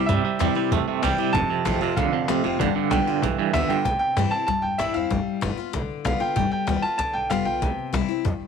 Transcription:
0.06 upright bass G2, clean electric guitar C3 G3, steel-string acoustic guitar C3, upright piano E5, cajon bass, cajon slap
0.24 clean electric guitar C3 G3, muted upright bass stroke, cajon slap
0.39 upright bass E2, clean electric guitar C3 G3, steel-string acoustic guitar E3 G3 C4 E4, cajon slap
0.55 clean electric guitar C3 G3, steel-string acoustic guitar C4 E4, muted upright bass stroke, cajon slap
0.64 cajon slap
0.71 upright bass E2, steel-string acoustic guitar G2, clean electric guitar C3 A3, cajon bass, cajon slap
0.80 cajon slap
0.88 clean electric guitar C3 A3, muted upright bass stroke
1.02 upright bass C2, clean electric guitar C3 G3, steel-string acoustic guitar E3 G3 C4 E4, upright piano G5, cajon slap
1.18 clean electric guitar C3 G3, steel-string acoustic guitar C4 E4, muted upright bass stroke
1.26 cajon slap
1.33 upright bass F1, clean electric guitar F2 C3, upright piano A5, cajon bass, cajon slap
1.49 clean electric guitar F2 C3, muted upright bass stroke
1.65 upright bass A1, clean electric guitar F2 C3, steel-string acoustic guitar F3 A3 C4 F4, cajon slap
1.81 clean electric guitar F2 C3, steel-string acoustic guitar C4 F4, muted upright bass stroke, cajon slap
1.96 upright bass C2, clean electric guitar F2 D3, steel-string acoustic guitar C3, upright piano F5, cajon bass, cajon slap
2.12 clean electric guitar F2 D3, muted upright bass stroke, cajon slap
2.28 upright bass A1, clean electric guitar F2 C3, steel-string acoustic guitar F3 A3 C4 F4, cajon slap
2.44 upright bass F1, clean electric guitar F2 C3, steel-string acoustic guitar C4 F4
2.59 upright bass G1, clean electric guitar G2 D3, steel-string acoustic guitar G3, cajon bass, cajon slap
2.75 clean electric guitar G2 D3, muted upright bass stroke, cajon slap
2.90 upright bass B1, clean electric guitar G2 D3, steel-string acoustic guitar G3 B3 F4, upright piano G5, cajon slap
3.06 clean electric guitar G2 D3, steel-string acoustic guitar B3 F4, muted upright bass stroke, cajon slap
3.14 cajon slap
3.22 upright bass B1, clean electric guitar G2 E3, steel-string acoustic guitar D3, cajon bass, cajon slap
3.30 cajon slap
3.38 clean electric guitar G2 E3, muted upright bass stroke
3.53 upright bass D2, clean electric guitar G2 D3, steel-string acoustic guitar G3 B3 F4, upright piano E5, cajon slap
3.68 clean electric guitar G2 D3, steel-string acoustic guitar B3 F4, upright piano G5, muted upright bass stroke, cajon slap
3.85 upright bass C2, steel-string acoustic guitar C3, upright piano G5, cajon bass, cajon slap
3.99 upright piano G5, muted upright bass stroke
4.09 cajon slap
4.17 upright bass G2, steel-string acoustic guitar E3 G3 C4 E4, cajon slap
4.31 steel-string acoustic guitar C4 E4, upright piano A5, muted upright bass stroke, cajon slap
4.47 upright bass E2, steel-string acoustic guitar G2, upright piano A5, cajon bass, cajon slap
4.62 upright bass E2, upright piano G5, cajon slap
4.72 cajon slap
4.78 upright bass A1, steel-string acoustic guitar E3 G3 C4 E4, upright piano E5, cajon slap
4.94 upright bass E2, steel-string acoustic guitar C4 E4, upright piano F5, cajon slap
5.10 upright bass G1, steel-string acoustic guitar G3, cajon bass, cajon slap
5.26 muted upright bass stroke, cajon slap
5.35 cajon slap
5.41 upright bass G1, steel-string acoustic guitar G3 B3 F4, cajon slap
5.57 steel-string acoustic guitar B3 F4, muted upright bass stroke, cajon slap
5.73 upright bass C2, steel-string acoustic guitar D3, cajon bass, cajon slap
5.89 muted upright bass stroke, cajon slap
5.97 cajon slap
6.05 upright bass B1, steel-string acoustic guitar G3 B3 F4, upright piano F5, cajon slap
6.20 steel-string acoustic guitar B3 F4, upright piano G5, muted upright bass stroke, cajon slap
6.36 upright bass G1, steel-string acoustic guitar G3, upright piano G5, cajon bass, cajon slap
6.52 upright piano G5, muted upright bass stroke, cajon slap
6.60 cajon slap
6.67 upright bass D2, steel-string acoustic guitar G3 B3 F4, cajon slap
6.82 steel-string acoustic guitar B3 F4, upright piano A5, muted upright bass stroke, cajon slap
6.98 upright bass B1, steel-string acoustic guitar D3, upright piano A5, cajon bass, cajon slap
7.13 upright bass B1, upright piano G5, cajon slap
7.23 cajon slap
7.30 upright bass F1, steel-string acoustic guitar G3 B3 F4, upright piano F5, cajon slap
7.45 upright bass B1, steel-string acoustic guitar B3 F4, upright piano G5
7.62 upright bass C2, steel-string acoustic guitar C3, cajon bass, cajon slap
7.77 muted upright bass stroke, cajon slap
7.86 cajon slap
7.93 upright bass C2, steel-string acoustic guitar E3 G3 C4 E4, cajon slap
8.08 steel-string acoustic guitar C4 E4, muted upright bass stroke, cajon slap
8.25 upright bass F2, steel-string acoustic guitar G2, cajon bass, cajon slap
8.40 muted upright bass stroke, cajon slap

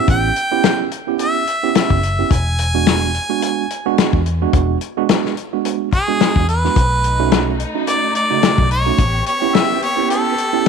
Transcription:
Already playing: tine electric piano B3 C#4 E4 G4
0.08 fingered electric bass A1, harmonica G5, kick, closed hi-hat
0.36 closed hi-hat
0.52 tine electric piano B3 C#4 E4 G4
0.63 snare, closed hi-hat
0.92 closed hi-hat
1.07 tine electric piano B3 C#4 E4 G4
1.19 harmonica E5, closed hi-hat
1.47 closed hi-hat
1.63 tine electric piano B3 C#4 E4 G4
1.75 harmonica E5, snare, closed hi-hat
1.90 fingered electric bass F#1, kick
2.03 closed hi-hat
2.19 tine electric piano B3 C#4 E4 G4
2.31 fingered electric bass E1, harmonica G#5, kick, closed hi-hat
2.59 closed hi-hat
2.74 tine electric piano G#3 B3 D4 F#4
2.86 snare, closed hi-hat
3.15 closed hi-hat
3.29 tine electric piano G#3 B3 D4 F#4
3.42 closed hi-hat
3.70 closed hi-hat
3.86 tine electric piano G#3 B3 D4 F#4
3.98 snare, closed hi-hat
4.13 fingered electric bass E2, kick
4.26 closed hi-hat
4.42 tine electric piano G#3 B3 D4 F#4
4.53 fingered electric bass E1, kick, closed hi-hat
4.81 closed hi-hat
4.97 tine electric piano G#3 B3 D4 F#4
5.09 snare, closed hi-hat
5.25 snare
5.37 closed hi-hat
5.53 tine electric piano G#3 B3 D4 F#4
5.65 closed hi-hat
5.93 harmonica G#4, kick, closed hi-hat
6.08 tine electric piano G#3 B3 D4 F#4
6.20 snare, closed hi-hat
6.36 fingered electric bass E2, kick
6.49 harmonica B4, closed hi-hat
6.64 tine electric piano G#3 B3 D4 F#4, snare
6.76 fingered electric bass B1, string section A3 D#4, kick, closed hi-hat
7.04 closed hi-hat
7.19 tine electric piano A3 C#4 D#4 F#4
7.32 snare, closed hi-hat
7.60 closed hi-hat
7.75 tine electric piano A3 C#4 D#4 F#4
7.87 harmonica D5, closed hi-hat
8.15 harmonica D5, closed hi-hat
8.30 tine electric piano C#3 A3 D#4 F#4
8.43 snare, closed hi-hat
8.58 fingered electric bass B1, kick
8.71 harmonica C#5, closed hi-hat
8.86 tine electric piano A3 C#4 D#4 F#4
8.98 fingered electric bass A1, string section B3 G4, kick, closed hi-hat
9.26 harmonica C#5, closed hi-hat
9.42 tine electric piano B3 C#4 E4 G4
9.54 harmonica E5, snare, closed hi-hat
9.82 harmonica C#5, closed hi-hat
9.97 tine electric piano B3 C#4 E4 G4
10.10 harmonica A4, closed hi-hat
10.38 closed hi-hat
10.53 tine electric piano B3 C#4 E4 G4

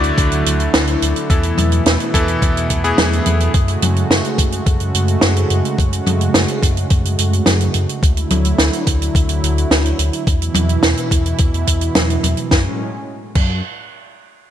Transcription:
Already playing: detuned saw bass D2, electric grand piano D3 A3 D4 E4 F#4 D5, analog synth pad D3 F#3 A3 E4
0.04 closed hi-hat
0.18 detuned saw bass D2, kick, closed hi-hat
0.32 detuned saw bass D2, closed hi-hat
0.46 detuned saw bass D2, closed hi-hat
0.60 closed hi-hat
0.74 detuned saw bass D2, snare, closed hi-hat
0.87 closed hi-hat
1.02 detuned saw bass D2, closed hi-hat
1.16 closed hi-hat
1.30 detuned saw bass E2, analog synth pad B2 E3, electric grand piano E3 B3 E4 A4, kick, closed hi-hat
1.43 closed hi-hat
1.58 detuned saw bass E2, closed hi-hat, mid tom
1.72 closed hi-hat
1.86 detuned saw bass E2, snare, closed hi-hat
2.00 closed hi-hat
2.14 detuned saw bass E2, electric grand piano E3 B3 E4 A4, kick, closed hi-hat
2.28 closed hi-hat
2.42 detuned saw bass E2, kick, closed hi-hat
2.56 detuned saw bass E2, closed hi-hat
2.70 detuned saw bass E2, kick, closed hi-hat
2.84 electric grand piano E3 B3 E4 G#4, closed hi-hat
2.98 detuned saw bass E2, snare, closed hi-hat, mid tom
3.13 closed hi-hat
3.26 detuned saw bass E2, closed hi-hat, mid tom
3.40 closed hi-hat
3.54 detuned saw bass F#2, analog synth pad C#3 G#3 F#4, kick, closed hi-hat
3.68 closed hi-hat
3.82 detuned saw bass F#2, closed hi-hat, mid tom
3.96 closed hi-hat
4.10 detuned saw bass F#2, snare, closed hi-hat
4.25 closed hi-hat
4.38 detuned saw bass F#2, kick, closed hi-hat
4.52 closed hi-hat
4.66 detuned saw bass F#2, kick, closed hi-hat
4.80 detuned saw bass F#2, closed hi-hat
4.95 detuned saw bass F#2, closed hi-hat
5.08 closed hi-hat
5.21 detuned saw bass F#2, snare, closed hi-hat
5.37 closed hi-hat
5.50 detuned saw bass F#2, closed hi-hat
5.65 closed hi-hat
5.78 detuned saw bass F#2, kick, closed hi-hat
5.93 closed hi-hat
6.07 detuned saw bass F#2, closed hi-hat, mid tom
6.21 closed hi-hat
6.34 detuned saw bass F#2, snare, closed hi-hat
6.48 closed hi-hat
6.63 detuned saw bass F#2, kick, closed hi-hat
6.77 closed hi-hat
6.90 detuned saw bass F#2, kick, closed hi-hat
7.05 detuned saw bass F#2, closed hi-hat
7.19 detuned saw bass F#2, closed hi-hat
7.33 closed hi-hat
7.46 detuned saw bass F#2, snare, closed hi-hat, mid tom
7.61 closed hi-hat
7.74 detuned saw bass F#2, closed hi-hat
7.89 closed hi-hat
8.03 detuned saw bass D2, analog synth pad D3 F#3 E4, kick, closed hi-hat
8.17 closed hi-hat
8.30 detuned saw bass D2, closed hi-hat, mid tom
8.45 closed hi-hat
8.58 detuned saw bass D2, snare, closed hi-hat
8.73 closed hi-hat
8.87 detuned saw bass D2, kick, closed hi-hat
9.02 closed hi-hat
9.15 detuned saw bass D2, kick, closed hi-hat
9.29 detuned saw bass D2, closed hi-hat
9.43 detuned saw bass D2, closed hi-hat
9.58 closed hi-hat
9.71 detuned saw bass D2, snare, closed hi-hat
9.86 closed hi-hat
9.99 detuned saw bass D2, closed hi-hat
10.13 closed hi-hat
10.27 detuned saw bass E2, analog synth pad B2 E3 E4, kick, closed hi-hat
10.42 closed hi-hat
10.54 detuned saw bass E2, closed hi-hat, mid tom
10.69 closed hi-hat
10.83 detuned saw bass E2, snare, closed hi-hat
10.97 closed hi-hat
11.11 detuned saw bass E2, kick, closed hi-hat
11.26 closed hi-hat
11.38 detuned saw bass E2, kick, closed hi-hat
11.53 detuned saw bass E2, closed hi-hat
11.67 detuned saw bass E2, kick, closed hi-hat
11.81 closed hi-hat
11.95 detuned saw bass E2, snare, closed hi-hat, mid tom
12.10 closed hi-hat
12.23 detuned saw bass E2, closed hi-hat, mid tom
12.37 closed hi-hat
12.51 detuned saw bass F#2, analog synth pad A2 F#3 G#3 C#4, kick, snare
13.35 detuned saw bass F#2, kick, crash

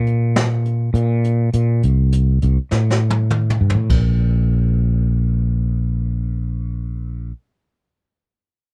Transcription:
Already playing: fretless electric bass A#2
0.07 closed hi-hat
0.36 snare, closed hi-hat
0.65 closed hi-hat
0.94 fretless electric bass A#2, closed hi-hat
1.24 closed hi-hat
1.53 fretless electric bass A#2, closed hi-hat
1.83 fretless electric bass C2, closed hi-hat
2.12 closed hi-hat
2.42 fretless electric bass C2, closed hi-hat
2.71 fretless electric bass A2, snare
2.90 snare
3.10 high tom
3.31 mid tom
3.50 mid tom
3.61 fretless electric bass G2
3.70 floor tom
3.75 fretless electric bass A2
3.90 fretless electric bass A#1, kick, ride

